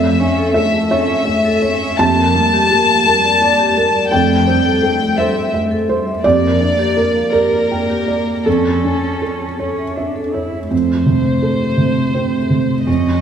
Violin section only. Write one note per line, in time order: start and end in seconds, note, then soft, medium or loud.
0.00 0.52 E5 medium
0.53 0.86 E5 medium
0.87 1.95 E5 medium
1.97 4.11 A5 medium
4.11 5.15 G5 medium
5.17 5.53 E5 medium
6.23 7.29 D5 medium
7.32 8.46 A#4 medium
8.46 9.59 A4 soft
10.71 12.83 C5 soft
12.86 13.21 D#5 soft